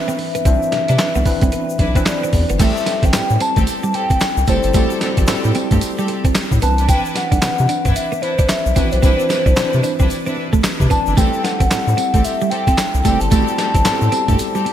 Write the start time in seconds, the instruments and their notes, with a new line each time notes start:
Already playing: tine electric piano E3 C4 D4 B4, soft synth lead E5
0.08 clean electric guitar C4, shaker
0.18 muted clean electric guitar stroke, open hi-hat
0.35 clean electric guitar B3, closed hi-hat, shaker
0.45 analog synth bass C2, tine electric piano E3 C4 D4 C5, clean electric guitar C4, kick, closed hi-hat, shaker
0.62 shaker
0.72 analog synth bass C3, muted clean electric guitar stroke, snare, closed hi-hat
0.88 analog synth bass C3, string section D4 E4 B4, clean electric guitar D4, closed hi-hat, shaker
0.99 snare, clap, closed hi-hat, shaker
1.15 analog synth bass C2, clean electric guitar B3, shaker
1.25 tine electric piano E3 C4 D4 B4, muted clean electric guitar stroke, kick, open hi-hat, shaker
1.41 analog synth bass C2, clean electric guitar C4, kick, closed hi-hat, shaker
1.52 clean electric guitar B3, closed hi-hat, shaker
1.69 shaker
1.79 analog synth bass B1, string section D4 E4 B4, muted clean electric guitar stroke, kick, closed hi-hat
1.95 tine electric piano E3 C4 D4 B4, clean electric guitar C4, kick, closed hi-hat, shaker
2.06 soft synth lead D5, snare, clap, closed hi-hat, shaker
2.23 clean electric guitar C4, shaker
2.33 analog synth bass E2, muted clean electric guitar stroke, kick, open hi-hat, shaker
2.49 analog synth bass G1, clean electric guitar B3, closed hi-hat, shaker
2.59 analog synth bass A1, tine electric piano G3 C4 E4 A4, clean electric guitar A3, string section C4 G4 A4, soft synth lead E5, kick, closed hi-hat, crash, tambourine, shaker
2.77 shaker
2.86 muted clean electric guitar stroke, snare, closed hi-hat, tambourine
3.03 analog synth bass A1, clean electric guitar C4, soft synth lead G5, kick, closed hi-hat, shaker
3.12 analog synth bass A2, tine electric piano G3 C4 E4 B4, muted clean electric guitar stroke, snare, clap, closed hi-hat, tambourine, shaker
3.30 analog synth bass A2, shaker
3.40 clean electric guitar C4, soft synth lead A5, closed hi-hat, tambourine
3.56 analog synth bass A1, clean electric guitar A3, string section C4 G4 A4, kick, closed hi-hat, shaker
3.67 soft synth lead A5, closed hi-hat, tambourine, shaker
3.83 clean electric guitar G3, shaker
3.94 string section C4 G4 A4, soft synth lead G5, muted clean electric guitar stroke, closed hi-hat
4.10 clean electric guitar C4, kick, closed hi-hat, shaker
4.20 snare, clap, closed hi-hat, tambourine, shaker
4.37 analog synth bass C2, shaker
4.47 analog synth bass F#1, tine electric piano G3 C4 E4 A4, clean electric guitar A3, string section C4 G4 A4, soft synth lead C5, kick, closed hi-hat, tambourine, shaker
4.63 analog synth bass G1, closed hi-hat, shaker
4.73 analog synth bass A1, tine electric piano G3 C4 E4 F#4, clean electric guitar A3, string section C4 G4 A4, kick, closed hi-hat, tambourine, shaker
4.90 shaker
5.01 string section C4 G4 A4, muted clean electric guitar stroke, snare, closed hi-hat, tambourine
5.17 analog synth bass A1, clean electric guitar C4, kick, closed hi-hat, shaker
5.27 analog synth bass A2, tine electric piano G3 C4 E4 A4, string section C4 G4 A4, muted clean electric guitar stroke, snare, clap, closed hi-hat, tambourine, shaker
5.44 analog synth bass A2, shaker
5.55 clean electric guitar C4, closed hi-hat, tambourine
5.71 analog synth bass G2, clean electric guitar A3, string section C4 G4 A4, kick, closed hi-hat, shaker
5.81 closed hi-hat, tambourine, shaker
5.98 clean electric guitar G3, string section C4 G4 A4, shaker
6.08 muted clean electric guitar stroke, closed hi-hat
6.25 clean electric guitar C4, kick, closed hi-hat, shaker
6.35 snare, clap, closed hi-hat, tambourine, shaker
6.52 analog synth bass A2, kick, shaker
6.62 analog synth bass C2, tine electric piano E3 C4 D4 B4, clean electric guitar B3, soft synth lead A5, closed hi-hat, tambourine, shaker
6.78 string section D4 E4 B4, closed hi-hat, shaker
6.88 clean electric guitar C4, string section D4 E4 B4, soft synth lead G5, kick, closed hi-hat, tambourine, shaker
7.05 shaker
7.15 soft synth lead F#5, muted clean electric guitar stroke, snare, closed hi-hat, tambourine
7.32 analog synth bass C2, clean electric guitar D4, kick, closed hi-hat, shaker
7.42 analog synth bass C3, tine electric piano E3 C4 D4 B4, muted clean electric guitar stroke, snare, clap, closed hi-hat, tambourine, shaker
7.58 analog synth bass C3, shaker
7.69 clean electric guitar D4, closed hi-hat, tambourine
7.85 analog synth bass G2, clean electric guitar C4, string section D4 E4 B4, kick, closed hi-hat, shaker
7.95 soft synth lead E5, closed hi-hat, tambourine, shaker
8.12 clean electric guitar B3, shaker
8.22 string section D4 E4 B4, soft synth lead C5, muted clean electric guitar stroke, closed hi-hat
8.38 clean electric guitar D4, kick, closed hi-hat, shaker
8.49 soft synth lead E5, snare, clap, closed hi-hat, tambourine, shaker
8.66 analog synth bass B1, shaker
8.76 analog synth bass A1, tine electric piano E3 C4 D4 F#4, clean electric guitar C4, string section D4 E4 B4, kick, closed hi-hat, tambourine, shaker
8.92 analog synth bass B1, soft synth lead C5, closed hi-hat, shaker
9.02 analog synth bass C2, tine electric piano E3 C4 D4 C5, clean electric guitar C4, string section D4 E4 B4, kick, tambourine, shaker
9.19 shaker
9.29 string section D4 E4 B4, muted clean electric guitar stroke, snare, tambourine, shaker
9.46 analog synth bass C2, clean electric guitar D4, kick, shaker
9.56 analog synth bass C3, tine electric piano E3 C4 D4 C5, string section D4 E4 B4, muted clean electric guitar stroke, snare, clap, tambourine, shaker
9.73 analog synth bass C3, shaker
9.83 clean electric guitar D4, tambourine, shaker
9.99 analog synth bass C2, clean electric guitar C4, string section D4 E4 B4, kick, shaker
10.10 tambourine, shaker
10.26 clean electric guitar C4, string section D4 E4 B4, shaker
10.37 muted clean electric guitar stroke
10.53 clean electric guitar A3, kick, shaker
10.64 snare, clap, tambourine, shaker
10.79 analog synth bass C3, string section D4 E4 B4, kick, shaker
10.90 tine electric piano E3 C4 D4 D5, clean electric guitar B3, soft synth lead A5, kick, tambourine, shaker
11.06 analog synth bass G1, string section D4 E4 B4, shaker
11.17 analog synth bass A1, tine electric piano G3 C4 E4 A4, clean electric guitar A3, string section C4 G4 A4, soft synth lead G5, kick, closed hi-hat, tambourine, shaker
11.34 shaker
11.44 soft synth lead F#5, muted clean electric guitar stroke, snare, closed hi-hat, tambourine
11.60 analog synth bass A1, clean electric guitar C4, kick, closed hi-hat, shaker
11.71 analog synth bass A2, tine electric piano G3 C4 E4 A4, muted clean electric guitar stroke, snare, clap, closed hi-hat, tambourine, shaker
11.87 analog synth bass A2, shaker
11.97 clean electric guitar C4, closed hi-hat, tambourine
12.14 analog synth bass A1, clean electric guitar A3, string section C4 G4 A4, kick, closed hi-hat, shaker
12.24 soft synth lead E5, closed hi-hat, tambourine, shaker
12.41 clean electric guitar G3, shaker
12.50 string section C4 G4 A4, soft synth lead G5, muted clean electric guitar stroke, closed hi-hat
12.67 clean electric guitar C4, kick, closed hi-hat, shaker
12.78 snare, clap, closed hi-hat, tambourine, shaker
12.94 analog synth bass C2, shaker
13.04 analog synth bass F#1, tine electric piano G3 C4 E4 A4, clean electric guitar A3, string section C4 G4 A4, kick, closed hi-hat, tambourine, shaker
13.20 analog synth bass G1, soft synth lead A5, closed hi-hat, shaker
13.31 analog synth bass A1, tine electric piano G3 C4 E4 F#4, clean electric guitar A3, string section C4 G4 A4, kick, closed hi-hat, tambourine, shaker
13.48 shaker
13.58 string section C4 G4 A4, muted clean electric guitar stroke, snare, closed hi-hat, tambourine
13.74 analog synth bass A1, clean electric guitar C4, kick, closed hi-hat, shaker
13.85 analog synth bass A2, tine electric piano G3 B3 E4 A4, string section C4 G4 A4, muted clean electric guitar stroke, snare, clap, closed hi-hat, tambourine, shaker
13.92 tine electric piano C4
14.01 analog synth bass A2, shaker
14.12 clean electric guitar C4, closed hi-hat, tambourine
14.28 analog synth bass G2, clean electric guitar A3, string section C4 G4 A4, kick, closed hi-hat, shaker
14.39 closed hi-hat, tambourine, shaker
14.54 clean electric guitar G3, string section C4 G4 A4, shaker
14.65 muted clean electric guitar stroke, closed hi-hat